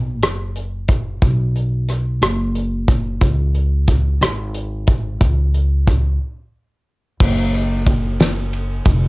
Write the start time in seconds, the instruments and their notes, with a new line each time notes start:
Already playing: upright bass B1
0.22 upright bass F#1, cross-stick, closed hi-hat
0.56 closed hi-hat
0.88 kick, closed hi-hat
1.22 upright bass B1, kick, closed hi-hat
1.56 closed hi-hat
1.89 cross-stick, closed hi-hat
2.22 upright bass F#1, cross-stick, closed hi-hat
2.55 closed hi-hat
2.88 kick, closed hi-hat
3.21 upright bass C#2, kick, closed hi-hat
3.55 closed hi-hat
3.88 kick, closed hi-hat
4.21 upright bass G#1, cross-stick, closed hi-hat
4.54 closed hi-hat
4.87 kick, closed hi-hat
5.20 upright bass C#2, kick, closed hi-hat
5.54 closed hi-hat
5.87 kick, cross-stick, closed hi-hat
7.20 upright bass F#1, kick, crash
7.54 ride
7.87 kick, ride
8.20 snare, ride
8.53 ride
8.85 upright bass F1, kick, ride